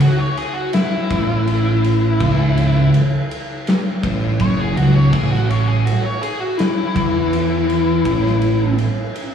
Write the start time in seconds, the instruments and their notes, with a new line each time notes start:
0.00 lead electric guitar F#4, ride
0.19 lead electric guitar C#5
0.37 lead electric guitar G#4, ride
0.54 lead electric guitar F#4
0.73 lead electric guitar E4, snare, ride
1.11 picked electric bass A1, distorted electric guitar A2, kick, ride
1.47 ride
1.84 ride
2.20 picked electric bass C#1, distorted electric guitar C#2, kick, ride
2.58 ride
2.94 ride
3.31 ride
3.67 snare, ride
4.03 picked electric bass A1, distorted electric guitar A2, kick, ride
4.39 picked electric bass F#1, distorted electric guitar F#2, lead electric guitar C#5, kick, ride
4.60 lead electric guitar G#4
4.76 picked electric bass C#1, distorted electric guitar C#2, lead electric guitar F#4, ride
4.95 lead electric guitar C#5
5.12 picked electric bass A1, distorted electric guitar A2, lead electric guitar G#4, kick, crash
5.32 lead electric guitar F#4, snare
5.49 lead electric guitar C#5, ride
5.68 lead electric guitar G#4
5.85 lead electric guitar F#4, ride
6.03 lead electric guitar C#5
6.22 lead electric guitar G#4, ride
6.40 lead electric guitar F#4
6.58 lead electric guitar E4, snare, ride
6.96 picked electric bass E2, distorted electric guitar E3, kick, ride
7.33 ride
7.70 ride
8.05 picked electric bass A1, distorted electric guitar A2, kick, ride
8.26 snare
8.42 ride
8.78 ride
9.16 ride